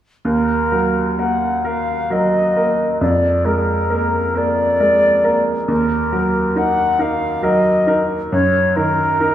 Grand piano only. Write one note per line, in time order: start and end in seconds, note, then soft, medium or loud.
0.25 2.96 D#2 soft
0.72 1.15 F#3 soft
0.72 1.15 A#4 soft
1.18 1.61 A#3 soft
1.18 1.62 A#4 soft
1.64 2.07 A#3 soft
1.64 2.07 A#4 soft
2.10 2.52 F#3 soft
2.10 2.52 A#4 soft
2.57 2.97 A#3 soft
2.57 2.97 A#4 soft
3.01 5.66 F2 soft
3.45 3.86 G#3 soft
3.45 3.87 A#4 soft
3.90 4.31 A#3 soft
3.90 4.31 A#4 soft
4.34 4.76 A#3 soft
4.34 4.76 A#4 soft
4.80 5.21 G#3 soft
4.80 5.21 A#4 soft
5.24 5.65 A#3 soft
5.24 5.66 A#4 soft
5.68 8.28 D#2 soft
6.12 6.52 F#3 soft
6.12 6.53 A#4 soft
6.56 6.96 D#4 soft
6.56 6.96 A#4 soft
6.99 7.39 D#4 soft
6.99 7.40 A#4 soft
7.42 7.84 F#3 soft
7.42 7.84 A#4 soft
7.87 8.29 D#4 soft
7.87 8.29 A#4 soft
8.32 9.35 F#2 soft
8.76 9.17 D#3 soft
8.76 9.17 A#4 soft
9.20 9.35 D#4 soft
9.20 9.35 A#4 soft